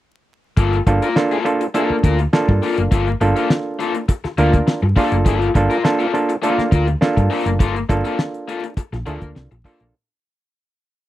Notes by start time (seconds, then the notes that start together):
0.57 G1 A#3 F4 A4, kick, closed hi-hat
0.73 closed hi-hat
0.87 G1 A#3 D4 F4 A4, muted overdriven electric guitar stroke, kick, closed hi-hat
1.02 A#3 F4 A#4, closed hi-hat
1.16 A#3 D4 F4 A4, muted overdriven electric guitar stroke, snare
1.31 A#3 F4 A4, closed hi-hat
1.45 A#3 D4 F4 A4, muted overdriven electric guitar stroke, closed hi-hat
1.61 muted overdriven electric guitar stroke, closed hi-hat
1.74 A#3 D4 F4 A4, closed hi-hat
1.90 muted fingered electric bass stroke, muted overdriven electric guitar stroke
2.04 D2 A#3 F4 A#4, kick, closed hi-hat
2.19 muted overdriven electric guitar stroke, closed hi-hat
2.33 A#3 D4 F4 A4, snare
2.49 G2, muted overdriven electric guitar stroke, kick
2.63 A#3 F4 A4, open hi-hat
2.78 F#1, muted overdriven electric guitar stroke, closed hi-hat
2.91 G1 A#3 F4 A4, kick, closed hi-hat
3.07 muted overdriven electric guitar stroke, closed hi-hat
3.21 G1 A#3 D4 F4 A4, muted overdriven electric guitar stroke, closed hi-hat
3.36 A#3 F4 A4, closed hi-hat
3.49 muted overdriven electric guitar stroke, snare
3.79 A#3 F4 A4, closed hi-hat
3.95 muted overdriven electric guitar stroke, closed hi-hat
4.09 muted overdriven electric guitar stroke, kick, closed hi-hat
4.24 muted overdriven electric guitar stroke, muted fingered electric bass stroke, snare, closed hi-hat
4.38 D2 A#3 D4 F4 A4 A#4, closed hi-hat
4.53 muted overdriven electric guitar stroke, kick, closed hi-hat
4.67 muted overdriven electric guitar stroke, snare
4.82 G2, muted overdriven electric guitar stroke
4.96 A#3 D4 F4 G#4 A4, kick, open hi-hat
5.04 A4
5.12 F#1, muted overdriven electric guitar stroke, closed hi-hat
5.25 G1 A#3 F4 A4, kick, closed hi-hat
5.42 closed hi-hat
5.55 G1 A#3 D4 F4 A4, muted overdriven electric guitar stroke, kick, closed hi-hat
5.70 A#3 F4 A#4, closed hi-hat
5.84 A#3 D4 F4 A4, muted overdriven electric guitar stroke, snare
5.99 A#3 F4 A4, closed hi-hat
6.13 A#3 D4 F4 A4, muted overdriven electric guitar stroke, closed hi-hat
6.29 muted overdriven electric guitar stroke, closed hi-hat
6.42 A3 A#3 D4 F4 A4, closed hi-hat
6.50 A#3
6.58 muted overdriven electric guitar stroke, muted fingered electric bass stroke, snare, closed hi-hat
6.72 D2 A#3 F4 A#4, kick, closed hi-hat
6.88 muted overdriven electric guitar stroke, closed hi-hat
7.01 A#3 D4 F4 A4, snare
7.17 G2, muted overdriven electric guitar stroke, kick, closed hi-hat
7.30 A#3 F4 A4, open hi-hat
7.46 F#1, muted overdriven electric guitar stroke, closed hi-hat
7.59 G1 A#3 F4 A4, kick, closed hi-hat
7.75 muted overdriven electric guitar stroke, closed hi-hat
7.89 G1 A#3 D4 F4 A4, muted overdriven electric guitar stroke, kick, closed hi-hat
8.04 A#3 F4 A4, closed hi-hat
8.18 muted overdriven electric guitar stroke, snare
8.34 closed hi-hat
8.48 A#3 F4 A4, closed hi-hat
8.64 muted overdriven electric guitar stroke, closed hi-hat
8.77 muted overdriven electric guitar stroke, kick, closed hi-hat
8.93 A#1, muted overdriven electric guitar stroke, snare, closed hi-hat
9.06 D2 A#3 D4 F4 A4, closed hi-hat
9.21 D2, muted overdriven electric guitar stroke, kick, closed hi-hat
9.35 C2, muted overdriven electric guitar stroke, snare
9.51 A#1, muted overdriven electric guitar stroke, closed hi-hat
9.65 A#3 D4 F4 A4, kick, open hi-hat
9.80 A#1, muted overdriven electric guitar stroke, closed hi-hat